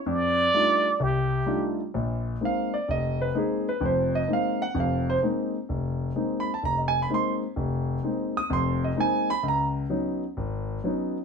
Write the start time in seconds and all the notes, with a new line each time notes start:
0.06 F2 D5
0.54 G3 A3 D4 D#4 F4
1.00 C2 G4
1.46 G3 A3 D4 D#4 F4
1.94 A#1 A#2
2.41 G#3 A#3 C4 D#4
2.45 F5
2.74 D5
2.88 F1 D#5
3.21 B4
3.35 G#3 A#3 C4 D#4 G#4
3.69 B4
3.80 F1 F2
3.85 C5
4.15 D#5
4.28 G#3 A#3 C4 D#4
4.33 F5
4.62 F#5
4.74 F1 F2
4.80 F5
5.10 C5
5.22 G#3 A#3 C4 D#4
5.69 F1
6.15 G#3 A#3 C4 D#4
6.40 B5
6.54 A5
6.63 F1 A#5
6.78 D#5
6.88 G#5
7.02 B5
7.09 G#3 A#3 C4 D#4
7.14 C6
7.56 F1
8.03 G#3 A#3 C4 D#4
8.37 D#6
8.50 F1 F2 C6
8.84 D#5
8.96 G#3 A#3 C4 D#4
9.00 G#5
9.30 B5
9.43 C#2
9.48 A#5
9.90 F#3 B3 C#4 D#4
10.37 G#1
10.84 F#3 B3 C#4 D#4